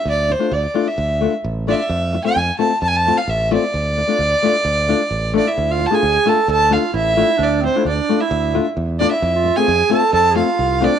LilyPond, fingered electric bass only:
\new Staff \with { instrumentName = "Fingered electric bass" } { \clef bass \time 4/4 \key d \minor \tempo 4 = 131 d,4 d,8 r8 d,4 a,,4 | f,4 f,8 r8 f,4 a,,4 | d,4 d,8 r8 d,4 a,,4 | d,4 d,8 r8 d,4 a,,4 |
d,4 d,8 r8 d,4 e,4 | f,4 f,8 r8 f,4 c,4 | }